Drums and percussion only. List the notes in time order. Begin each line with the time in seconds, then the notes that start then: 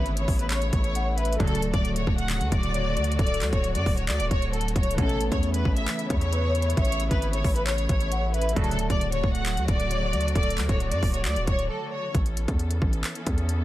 0.06 closed hi-hat
0.17 closed hi-hat
0.28 kick, open hi-hat
0.39 closed hi-hat
0.50 clap, closed hi-hat
0.62 closed hi-hat
0.73 kick, closed hi-hat
0.84 closed hi-hat
0.95 closed hi-hat
1.18 closed hi-hat
1.25 closed hi-hat
1.33 closed hi-hat
1.40 kick, closed hi-hat
1.47 closed hi-hat
1.55 closed hi-hat
1.62 closed hi-hat
1.74 kick, closed hi-hat
1.85 closed hi-hat
1.96 closed hi-hat
2.07 kick
2.18 closed hi-hat
2.30 clap, closed hi-hat
2.41 closed hi-hat
2.52 kick, closed hi-hat
2.63 closed hi-hat
2.74 closed hi-hat
2.97 closed hi-hat
3.04 closed hi-hat
3.12 closed hi-hat
3.19 kick, closed hi-hat
3.27 closed hi-hat
3.34 closed hi-hat
3.41 clap, closed hi-hat
3.53 kick, closed hi-hat
3.64 closed hi-hat
3.75 closed hi-hat
3.86 kick, open hi-hat
3.97 closed hi-hat
4.09 clap, closed hi-hat
4.20 closed hi-hat
4.31 kick, closed hi-hat
4.42 closed hi-hat
4.53 closed hi-hat
4.61 closed hi-hat
4.68 closed hi-hat
4.76 kick, closed hi-hat
4.83 closed hi-hat
4.91 closed hi-hat
4.98 kick, closed hi-hat
5.09 closed hi-hat
5.21 closed hi-hat
5.32 kick, closed hi-hat
5.43 closed hi-hat
5.54 closed hi-hat
5.65 kick
5.77 closed hi-hat
5.88 clap, closed hi-hat
5.99 closed hi-hat
6.10 kick, closed hi-hat
6.21 closed hi-hat
6.33 closed hi-hat
6.55 closed hi-hat
6.62 closed hi-hat
6.70 closed hi-hat
6.77 kick, closed hi-hat
6.85 closed hi-hat
6.92 closed hi-hat
7.00 closed hi-hat
7.11 kick, closed hi-hat
7.22 closed hi-hat
7.33 closed hi-hat
7.44 kick, open hi-hat
7.56 closed hi-hat
7.67 clap, closed hi-hat
7.78 closed hi-hat
7.89 kick, closed hi-hat
8.00 closed hi-hat
8.12 closed hi-hat
8.34 closed hi-hat
8.41 closed hi-hat
8.49 closed hi-hat
8.56 kick, closed hi-hat
8.64 closed hi-hat
8.71 closed hi-hat
8.79 closed hi-hat
8.90 kick, closed hi-hat
9.01 closed hi-hat
9.12 closed hi-hat
9.24 kick
9.35 closed hi-hat
9.46 clap, closed hi-hat
9.57 closed hi-hat
9.68 kick, closed hi-hat
9.80 closed hi-hat
9.91 closed hi-hat
10.13 closed hi-hat
10.21 closed hi-hat
10.28 closed hi-hat
10.35 kick, closed hi-hat
10.43 closed hi-hat
10.50 closed hi-hat
10.58 clap, closed hi-hat
10.69 kick, closed hi-hat
10.80 closed hi-hat
10.91 closed hi-hat
11.03 kick, open hi-hat
11.14 closed hi-hat
11.25 clap, closed hi-hat
11.36 closed hi-hat
11.47 kick, closed hi-hat
11.59 closed hi-hat
12.15 kick, closed hi-hat
12.26 closed hi-hat
12.37 closed hi-hat
12.48 kick, closed hi-hat
12.59 closed hi-hat
12.71 closed hi-hat
12.82 kick
12.93 closed hi-hat
13.04 clap, closed hi-hat
13.15 closed hi-hat
13.27 kick, closed hi-hat
13.38 closed hi-hat
13.49 closed hi-hat